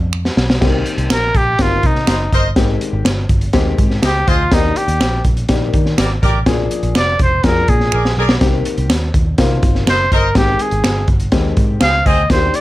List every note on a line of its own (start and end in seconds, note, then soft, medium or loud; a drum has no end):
0.00 0.29 F2 medium
0.13 finger snap loud
0.25 snare medium
0.37 0.57 B1 medium
0.37 snare medium
0.50 snare loud
0.61 0.82 C2 medium
0.61 0.67 D3 medium
0.61 1.11 A#3 medium
0.61 1.11 C4 medium
0.61 1.11 G4 medium
0.61 kick loud
0.61 snare loud
0.61 crash medium
0.67 1.13 D#3 medium
0.86 closed hi-hat medium
0.98 1.08 C2 medium
0.98 closed hi-hat soft
1.10 1.30 A#1 medium
1.10 1.39 A#4 medium
1.10 finger snap loud
1.10 snare loud
1.10 closed hi-hat loud
1.35 1.55 A#1 medium
1.35 1.63 G4 medium
1.35 kick medium
1.35 closed hi-hat medium
1.59 1.79 G1 medium
1.59 2.08 D#3 medium
1.59 2.08 A#3 medium
1.59 2.08 C4 medium
1.59 1.88 F4 medium
1.59 2.08 G4 medium
1.59 kick medium
1.59 snare loud
1.59 closed hi-hat medium
1.83 2.04 C3 medium
1.83 2.34 D#4 medium
1.83 kick loud
1.83 closed hi-hat medium
1.95 snare soft
2.07 2.27 F#1 medium
2.07 2.18 A#4 medium
2.07 2.18 C5 medium
2.07 2.18 D#5 medium
2.07 finger snap loud
2.07 snare loud
2.07 closed hi-hat loud
2.32 2.52 G1 medium
2.32 2.48 A#4 medium
2.32 2.48 C5 medium
2.32 2.48 D#5 loud
2.32 kick medium
2.32 closed hi-hat medium
2.56 2.77 G#1 medium
2.56 3.06 D#3 medium
2.56 3.06 G#3 medium
2.56 3.06 C4 medium
2.56 3.06 G4 loud
2.56 kick loud
2.56 snare loud
2.56 closed hi-hat medium
2.81 closed hi-hat medium
2.93 3.03 G#1 medium
3.05 3.25 G1 loud
3.05 finger snap loud
3.05 snare loud
3.05 closed hi-hat loud
3.29 3.49 G1 medium
3.29 kick medium
3.29 closed hi-hat medium
3.41 closed hi-hat medium
3.53 3.74 D#2 loud
3.53 4.03 D#3 medium
3.53 4.03 G#3 medium
3.53 4.03 C4 medium
3.53 4.03 G4 loud
3.53 kick medium
3.53 snare loud
3.53 closed hi-hat medium
3.78 3.99 G#2 medium
3.78 kick loud
3.78 closed hi-hat medium
3.90 snare soft
4.02 4.23 C#2 medium
4.02 4.30 G4 medium
4.02 4.13 G#4 medium
4.02 4.13 C5 medium
4.02 4.13 D#5 loud
4.02 finger snap loud
4.02 snare loud
4.02 closed hi-hat loud
4.27 4.47 D2 medium
4.27 4.55 F4 medium
4.27 4.43 G#4 medium
4.27 4.43 C5 medium
4.27 4.43 D#5 loud
4.27 kick medium
4.27 closed hi-hat medium
4.51 4.72 D#2 loud
4.51 5.01 D#3 medium
4.51 5.01 A#3 medium
4.51 5.01 D4 medium
4.51 4.79 D#4 medium
4.51 5.01 G4 medium
4.51 kick loud
4.51 snare loud
4.51 closed hi-hat loud
4.76 5.25 G4 medium
4.76 closed hi-hat medium
4.88 4.98 D#2 medium
4.88 closed hi-hat soft
5.01 5.21 A#1 loud
5.01 finger snap loud
5.01 snare loud
5.01 closed hi-hat medium
5.25 5.45 A#1 loud
5.25 kick medium
5.25 closed hi-hat medium
5.37 closed hi-hat medium
5.49 5.69 A#1 loud
5.49 5.98 D#3 medium
5.49 5.98 A#3 medium
5.49 5.98 D4 medium
5.49 5.99 G4 medium
5.49 kick loud
5.49 snare loud
5.49 closed hi-hat loud
5.74 5.94 D#3 medium
5.74 kick loud
5.74 closed hi-hat medium
5.86 snare soft
5.98 6.18 G#1 medium
5.98 6.08 G4 medium
5.98 6.08 A#4 medium
5.98 6.09 D5 medium
5.98 finger snap medium
5.98 snare loud
5.98 closed hi-hat loud
6.22 6.43 A1 medium
6.22 6.38 G4 medium
6.22 6.38 A#4 medium
6.22 6.38 D5 loud
6.22 kick medium
6.22 closed hi-hat medium
6.46 6.66 A#1 loud
6.46 6.96 F3 medium
6.46 6.96 A#3 medium
6.46 6.52 C#4 medium
6.46 6.96 G#4 loud
6.46 kick loud
6.46 snare loud
6.46 closed hi-hat loud
6.52 6.99 D4 medium
6.71 closed hi-hat medium
6.83 6.93 A#1 medium
6.83 closed hi-hat soft
6.95 7.15 F1 medium
6.95 7.19 D5 loud
6.95 finger snap loud
6.95 snare loud
6.95 closed hi-hat medium
7.19 7.39 F1 medium
7.19 7.47 C5 medium
7.19 kick medium
7.19 closed hi-hat medium
7.44 7.64 F2 medium
7.44 7.93 F3 medium
7.44 7.93 A#3 medium
7.44 7.93 D4 medium
7.44 7.93 G#4 medium
7.44 7.71 A#4 medium
7.44 kick loud
7.44 snare loud
7.44 closed hi-hat medium
7.68 7.88 A#2 medium
7.68 8.17 G#4 medium
7.68 kick loud
7.68 closed hi-hat medium
7.80 snare soft
7.92 8.13 A#1 medium
7.92 8.03 G#4 medium
7.92 8.03 A#4 medium
7.92 8.03 D5 loud
7.92 finger snap loud
8.05 snare medium
8.17 8.37 B1 medium
8.17 8.33 G#4 loud
8.17 8.33 A#4 medium
8.17 8.33 D5 loud
8.29 snare loud
8.41 8.61 C2 medium
8.41 8.90 D#3 medium
8.41 8.90 A#3 medium
8.41 8.90 C4 medium
8.41 8.90 G4 loud
8.41 kick loud
8.41 snare loud
8.41 closed hi-hat loud
8.65 closed hi-hat medium
8.78 8.90 C2 medium
8.78 closed hi-hat soft
8.90 9.10 D#2 medium
8.90 finger snap loud
8.90 snare loud
8.90 closed hi-hat medium
9.14 9.34 D#2 medium
9.14 kick medium
9.14 closed hi-hat medium
9.38 9.58 C3 medium
9.38 9.88 D#3 medium
9.38 9.88 A#3 medium
9.38 9.88 C4 medium
9.38 9.88 F4 medium
9.38 kick loud
9.38 snare loud
9.38 closed hi-hat medium
9.63 9.83 G1 medium
9.63 kick loud
9.63 closed hi-hat medium
9.75 snare soft
9.87 10.07 F#1 medium
9.87 9.98 A#4 medium
9.87 9.98 C5 medium
9.87 10.11 C5 loud
9.87 9.97 D#5 medium
9.87 finger snap loud
9.87 snare loud
9.87 closed hi-hat medium
10.12 10.32 G1 medium
10.12 10.27 A#4 medium
10.12 10.39 A#4 medium
10.12 10.27 C5 medium
10.12 10.27 D#5 loud
10.12 kick medium
10.12 closed hi-hat medium
10.35 10.55 G#1 loud
10.35 10.85 D#3 medium
10.35 10.85 G#3 medium
10.35 10.85 C4 medium
10.35 10.85 G4 medium
10.35 10.63 G4 medium
10.35 kick loud
10.35 snare loud
10.35 closed hi-hat loud
10.59 11.09 G#4 medium
10.59 closed hi-hat medium
10.71 10.82 G#1 loud
10.71 closed hi-hat soft
10.84 11.04 G1 medium
10.84 finger snap loud
10.84 snare loud
10.84 closed hi-hat loud
11.08 11.28 G1 medium
11.08 kick medium
11.08 closed hi-hat medium
11.20 closed hi-hat soft
11.32 11.53 D#2 medium
11.32 11.82 D#3 medium
11.32 11.82 G#3 medium
11.32 11.82 C4 medium
11.32 11.82 G4 medium
11.32 kick medium
11.32 snare loud
11.32 closed hi-hat medium
11.57 11.77 G#2 loud
11.57 kick loud
11.57 closed hi-hat medium
11.80 12.01 C#2 medium
11.80 11.91 C4 medium
11.80 11.91 G#4 medium
11.80 11.91 C5 medium
11.80 12.08 F5 loud
11.80 finger snap loud
11.80 snare loud
11.80 closed hi-hat medium
12.06 12.26 D2 medium
12.06 12.21 C4 medium
12.06 12.21 G#4 loud
12.06 12.21 C5 medium
12.06 12.30 D#5 loud
12.06 kick medium
12.06 closed hi-hat medium
12.30 12.50 D#2 loud
12.30 12.61 D#3 medium
12.30 12.61 A#3 medium
12.30 12.61 D4 medium
12.30 12.36 F4 medium
12.30 12.57 C5 medium
12.30 kick loud
12.30 snare loud
12.30 closed hi-hat loud
12.36 12.61 G4 medium
12.54 12.61 D5 medium
12.54 closed hi-hat medium